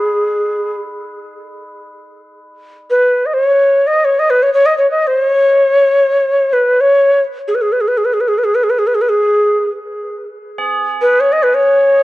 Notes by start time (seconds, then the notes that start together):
Already playing: G#4 B4
2.91 B4
3.26 D#5
3.34 C#5
3.87 D#5
4.05 C#5
4.19 D#5
4.30 B4
4.43 C#5
4.53 C#5
4.66 D#5
4.78 C#5
4.91 D#5
5.07 C5
5.22 C#5
6.53 B4
6.81 C#5
7.48 G#4
7.55 B4
7.62 G#4
7.72 B4
7.81 G#4
7.88 B4
7.98 G#4
8.05 B4
8.14 G#4
8.21 B4
8.28 G#4
8.38 B4
8.44 G#4
8.55 B4
8.64 G#4
8.70 B4
8.79 G#4
8.87 B4
8.95 G#4
9.01 B4
9.09 G#4
10.58 G#4
11.02 B4
11.20 C#5
11.32 D#5
11.43 B4
11.54 C#5